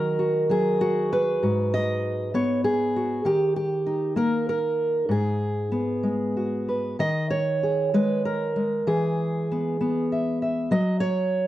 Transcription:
Already playing: D#3 F#3 F#4 A#4 D#5
0.19 F#4
0.49 F#3 G#4
0.81 F#4
1.13 B4
1.43 G#2 F#4
1.74 D#5
2.34 B3 C#5
2.64 G#4
2.96 F#4
3.25 D#3 G4
3.56 G4
3.86 D#4
4.16 A#3 A#4
4.49 A#4
5.09 G#2 G#4
5.72 B3
6.03 G#3
6.37 F#4
6.69 B4
6.99 D#3 D#5
7.30 C#5
7.63 G#4
7.94 G#3 B4
8.25 A#4
8.56 G#3
8.87 E3 G#4
9.52 B3
9.81 B3
10.12 E5
10.42 E5
10.71 F#3 D#5
11.00 C#5

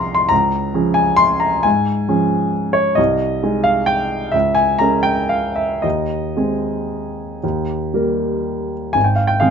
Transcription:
Already playing: C2 F3 C4 G#4 A#5 C6
0.15 C6
0.29 C#2 A#5
0.74 F3 C#4 G#4
0.94 G#5
1.17 C6
1.40 A#5
1.63 G#2 G#5
2.08 F3 C#4 G#4
2.73 C#5
2.95 C2 D#5
3.43 G#3 D#4 G#4
3.64 F5
3.86 G5
4.32 C#2 E5
4.55 G#5
4.79 G#3 C#4 A#4 A#5
5.03 G5
5.29 F5
5.56 E5
5.82 D#2 D#5
6.36 G#3 C4 G#4
7.43 D#2
7.94 G3 A#3 A#4
8.93 G#1 G#5
9.04 G5
9.16 F5
9.27 G5
9.40 D#3 G#3 C4 G#4 F5

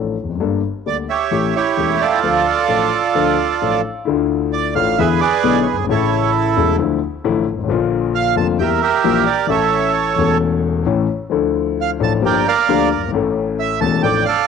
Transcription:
Already playing: A1 A2 F3 A3 D4 A4
0.24 E2
0.29 F2
0.35 F#2
0.40 G1 G2 G3 A#3 D4 A4
0.86 D2 D3 G3 A#3 D4 A4 D5
1.09 G4 C#5 E5
1.31 A1 A2 E3 A3 C#4 G4
1.56 E4 G4 C#5
1.77 E1 E2 E3 A3 C#4 G4
2.01 F4 A4 D5
2.23 D2 D3 F3 A3 D4 A4
2.68 A1 A2 F3 A3 D4 A4
3.15 D2 D3 F3 A3 D4 A4
3.62 A1 A2 F3 A3 D4 A4
4.05 D2 D3 A3 D4 E4
4.09 F4
4.53 D5
4.75 A1 A2 E3 A3 D4 F4 F5
4.98 E2 D3 E3 G#3 B3 E4 G#4 B4 E5
5.20 G#4 B4 D5
5.44 B1 B2 D3 G#3 B3 E4
5.61 C#5
5.66 B4
5.72 F#1
5.78 G1
5.84 G#1 C#3
5.89 A1 A2 E3 A3 E4 A4 C#5
6.56 E1 E2 C#3 E3 A3 E4
6.79 D2 D3 F3 A3 E4
7.24 A1 A2 D3 F3 A3 E4
7.53 G1
7.58 G#1
7.64 A1
7.68 A#1 A#2 D3 F3 A#3 F4
8.15 F5
8.36 F1 F2 D3 F3 A#3 F4 A5
8.59 E2 E3 G3 A#3 G4 A#4 E5 G5
8.81 G4 A#4 E5
9.04 A#1 A#2 E3 G3 A#3 G4
9.26 D5
9.47 A1 A2 E3 A3 C#4 E5
9.51 A4 C#5
10.16 E1 E2 E3 A3 C#4
10.20 A4
10.86 A1 A2 E3 A3 C#4 A4
11.30 D2 D3 F3 D4 E4 A4
11.81 F5
11.99 A1 A2 F3 D4 E4 A4 A5
12.22 G1 G2 F3 A#3 D4 G4 A#4 G5
12.26 D5
12.48 A#4 D5 F5
12.69 D2 D3 F3 A#3 D4 G4
12.92 D5
12.96 F#1
13.02 G1
13.08 G#1 E3
13.13 A1 A2 A3 C#4 A4
13.59 E5
13.81 E1 E2 E3 A3 C#4 A4 A5
14.03 A1 A2 F3 A3 D4 A4 D5 G5
14.25 A4 D5 F5

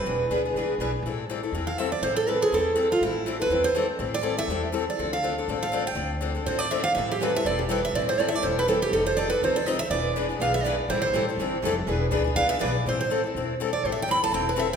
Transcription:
Already playing: B4
0.06 E1 E3 B3 D4 G#4 B4
0.30 D2 E3 B3 D4 G#4 B4
0.45 B3 D4 G#4
0.54 C2 E3 B3 D4 B4
0.59 G#4
0.78 B1 E3 B3 D4 G#4 B4
1.03 A1 E3 G3 C4 E4
1.07 A4
1.29 E3 G3 C4 E4 A4
1.43 C4 E4 A4
1.52 E2 E3 G3 C4 E4 A4
1.67 F5
1.78 E3 G3 C4 E4 A4 E5
1.92 D5
2.02 A1 E3 G3 C4 E4 A4 C5
2.16 A4
2.27 E3 G3 C4 E4 A4 B4
2.41 C4 E4 G#4 A4
2.52 E2 E3 G3 C4 E4 A4
2.76 E3 G3 C4 E4 A4
2.92 F4
3.01 A1 E3 G3 C4 E4 A4
3.26 E3 G3 C4 E4 A4
3.40 C4 E4 A4 B4
3.50 E2 E3 G3 C4 E4 A4
3.64 C5
3.75 E3 G3 C4 E4 A4
3.99 A1 E3 G3 C4 E4 A4
4.14 D5
4.21 E3 G3 C4 E4 A4
4.37 C4 E4 A4 E5
4.48 E2 E3 G3 C4 E4 A4
4.72 E3 G3 C4 E4 A4
4.90 D5
4.99 D2 D3 F3 C4 D4 A4
5.13 F5
5.23 D3 F3 C4 D4 A4
5.38 C4 D4 A4
5.48 A1 D3 F3 C4 D4 A4
5.63 F5
5.72 D3 F3 C4 D4 A4
5.87 G5
5.95 D2 D3 F3 C4 D4 A4
6.21 D3 F3 C4 D4 A4
6.35 C4 D4 A4
6.46 A1 D3 F3 C4 D4 A4 C5
6.59 D5
6.71 D3 F3 C4 D4 A4 E5
6.84 F5
6.95 A1 E3 G3 C4 E4 A4 E5
7.11 G4
7.22 E3 G3 C4 E4 A4 B4
7.35 C4 E4 A4 E5
7.45 E1 E3 G3 C4 E4 A4 D5
7.59 G4
7.69 E3 G3 C4 E4 A4 B4
7.85 E5
7.93 A1 E3 G3 C4 E4 A4 D5
8.09 C5
8.18 E3 G3 C4 E4 A4 D5
8.28 E4 A4 E5
8.33 C4 D5
8.43 E1 E3 G3 C4 E4 A4 C5
8.59 B4
8.68 E3 G3 C4 E4 A4
8.82 G4
8.92 F1 F3 C4 D#4 A4
9.06 C5
9.17 F3 C4 D#4 A4 D5
9.30 C4 D#4 A4 B4
9.42 C2 F3 C4 D#4 A4 C5
9.56 D5
9.66 F3 C4 D#4 A4 D#5
9.79 E5
9.90 E1 E3 B3 D4 G#4 B4 D5
10.16 E3 B3 D4 G#4 B4
10.29 B3 D4 G#4
10.40 B1 E3 B3 D4 G#4 B4 F5
10.54 E5
10.63 E3 B3 D4 G#4 B4 D5
10.88 A1 E3 G3 C4 E4 A4 C5
11.02 C5
11.13 A1 E3 G3 C4 E4 A4
11.29 C4 E4 A4
11.37 G1 E3 G3 C4 E4
11.42 A4
11.63 F1 E3 G3 C4 E4 A4
11.87 E1 E3 B3 D4 G#4 B4
12.11 D2 E3 B3 D4 G#4 B4
12.24 B3 D4 G#4
12.35 C2 E3 B3 D4 G#4 B4 F5
12.49 E5
12.59 B1 E3 B3 D4 G#4 B4 D5
12.86 A1 E3 G3 C4 E4 A4 C5
13.01 C5
13.10 E3 G3 C4 E4 A4
13.24 C4 E4 A4
13.35 E1 E3 G3 C4 E4 A4
13.60 E3 G3 C4 E4 A4
13.73 D5
13.84 A1 E3 G3 C4 E4 A4 C5
13.92 E5
14.02 G5
14.08 E3 G3 C4 E4 A4 B5
14.22 C4 E4 A4 A5
14.32 E1 E3 G3 C4 E4 A4 G5
14.49 B4
14.56 E3 G3 C4 E4 A4 E5

